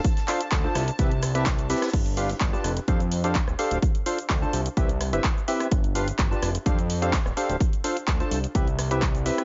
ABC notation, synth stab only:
X:1
M:4/4
L:1/16
Q:1/4=127
K:Gmix
V:1 name="Synth stab"
z2 [DFAcf] z2 [DFAca]2 z [CEGBe] z2 [CEGBe] z2 [CEGBe]2 | z2 [DFGBf] z2 [DFGBa]2 z [DGAcf] z2 [DGAcf] z2 [DGAcf]2 | z2 [DFAcf] z2 [DFAca]2 z [CEGBe] z2 [CEGBe] z2 [CEGBe]2 | z2 [DFGBf] z2 [DFGBa]2 z [DGAcf] z2 [DGAcf] z2 [DGAcf]2 |
z2 [DFAcf] z2 [DFAca]2 z [CEGBe] z2 [CEGBe] z2 [CEGBe]2 |]